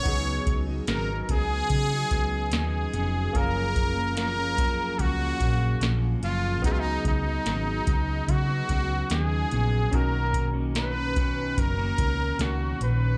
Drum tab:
HH |xxxxxxxx|xxxxxxxx|xxxxxxxx|xxxxxxxx|
SD |--o---o-|--o---o-|--o---o-|--o---o-|
BD |oo-ooo--|oo-ooo--|oo-ooo--|oo-ooo--|